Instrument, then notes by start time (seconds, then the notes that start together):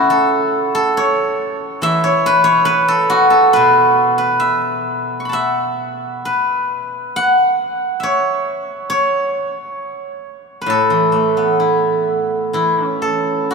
guzheng
Already playing: C#3 E4 F#4 B4 C#5
0.10 A4
0.75 A4
0.97 C#5
1.82 E3 E5
2.04 C#5
2.26 B4
2.44 C#5
2.65 B4
2.88 A4
3.10 F#4
3.30 A4
3.53 B2 B4
4.18 B4
4.40 E5
5.20 C#6
5.25 B5
5.29 E5 F#5 A5
6.25 B4
7.16 F#5
8.00 C#5 E5
8.90 C#5
10.62 B4
10.66 A2 A4
10.90 E3
11.12 A3
11.37 B3
11.60 E4
12.53 E3 E4
12.84 C#4
13.02 A4
13.51 F#4